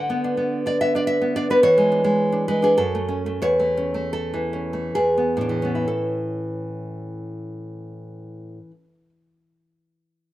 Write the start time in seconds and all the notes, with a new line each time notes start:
Already playing: D3 F#5
0.10 B3
0.24 D4
0.37 B3
0.66 D4 D5
0.81 B3 E5
0.95 D4 D5
1.07 E5
1.21 B3
1.36 D4 D5
1.50 B3 B4
1.63 E3 C#5
1.78 G#3
1.92 D4
2.04 G#3
2.32 D4
2.48 G#3 B4
2.62 D4 G#4
2.77 F#2 A4
2.95 A3
3.08 C#4
3.26 A3
3.42 E2 C#5
3.60 A3
3.77 C#4
3.94 A3
4.13 A4
4.34 E3
4.53 C#4
4.73 A3
4.95 E2 G#4
5.17 B3
5.37 A2
5.41 D4
5.49 E3
5.62 B3 C#4
5.75 E4
5.88 A4